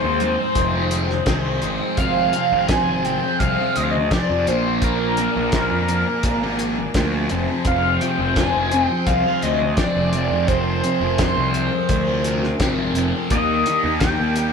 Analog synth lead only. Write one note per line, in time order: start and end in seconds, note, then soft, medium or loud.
0.00 1.23 C5 medium
1.98 2.69 F5 loud
2.68 3.06 G#5 loud
3.05 3.40 G5 loud
3.39 3.78 F5 loud
3.76 3.85 D#5 loud
3.83 3.92 F5 medium
3.91 4.14 D#5 medium
4.12 4.49 D5 medium
4.48 4.83 C5 medium
4.83 5.50 A#4 medium
5.56 6.92 A#4 medium
7.67 8.02 F5 loud
8.01 8.36 G5 loud
8.38 8.84 G#5 loud
8.84 9.04 G5 loud
9.07 9.44 F5 loud
9.43 9.77 D#5 loud
9.76 10.49 D5 medium
10.48 11.17 C5 loud
11.17 12.55 C5 medium
13.31 13.98 D#5 loud
14.00 14.53 G5 loud